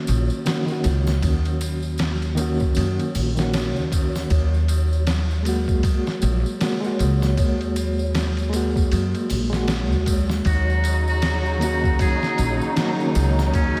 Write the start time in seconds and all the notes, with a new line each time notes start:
Already playing: D#3 F#3 A#3 C#4 F#4
0.07 A#1, ride, tambourine
0.30 tambourine
0.44 D#3 A#3 C#4 F#4, snare, ride, tambourine
0.66 D#3 A#3, tambourine
0.70 C#4 F#4
0.84 C#2, ride, tambourine
1.07 snare, tambourine, triangle
1.22 D#2, kick, ride, tambourine
1.45 ride, tambourine
1.61 ride, tambourine
1.82 tambourine
1.98 snare, ride, tambourine
2.22 ride, tambourine
2.35 D#3 A#3 C#4, ride, tambourine
2.41 F#4
2.60 kick, tambourine
2.75 F#2, ride, tambourine
2.99 ride, tambourine
3.15 A#1, open hi-hat, tambourine, triangle
3.35 D#3 A#3 C#4, snare, tambourine
3.41 F#4
3.53 snare, ride, tambourine
3.76 D#2, tambourine
3.92 kick, ride, tambourine
4.15 snare, tambourine, triangle
4.30 D#2, kick, ride, tambourine
4.54 tambourine
4.68 ride, tambourine
4.93 tambourine
5.07 snare, ride, tambourine
5.31 tambourine
5.43 G#3 A#3, ride, tambourine
5.49 F#4
5.68 kick, tambourine
5.83 kick, ride, tambourine
6.07 snare, tambourine
6.22 A#1, ride, tambourine
6.46 tambourine
6.60 G#3 A#3 F#4, snare, ride, tambourine
6.81 G#3 A#3, tambourine
6.86 F#4
6.99 C#2, ride, tambourine
7.22 snare, tambourine, triangle
7.37 D#2, kick, ride, tambourine
7.61 ride, tambourine
7.76 ride, tambourine
7.99 tambourine
8.15 snare, ride, tambourine
8.37 ride, tambourine
8.50 G#3 A#3, ride, tambourine
8.56 F#4
8.76 kick, tambourine
8.92 F#2, ride, tambourine
9.15 ride, tambourine
9.30 A#1, open hi-hat, tambourine, triangle
9.50 G#3 A#3, snare
9.54 F#4, tambourine
9.68 snare, ride, tambourine
9.92 D#2, tambourine
10.06 kick, ride, tambourine
10.30 snare, tambourine, triangle
10.45 D#2 C#3 F#3 D#4 F#4, kick, ride, tambourine
10.70 tambourine
10.84 ride, tambourine
11.08 F#4, tambourine
11.22 snare, ride, tambourine
11.46 tambourine
11.58 D#3 A#3 F#4, ride, tambourine
11.62 C#4 F#4
11.84 kick, tambourine
11.99 G#4, kick, ride, tambourine
12.23 snare, tambourine
12.38 A#1, ride, tambourine
12.61 tambourine
12.75 D#3 A#3 C#4 F#4, snare, ride, tambourine
12.96 D#3 A#3 C#4
13.00 F#4, tambourine
13.15 C#2, ride, tambourine
13.39 snare, tambourine, triangle
13.53 D#2 C#4, kick, ride, tambourine
13.77 ride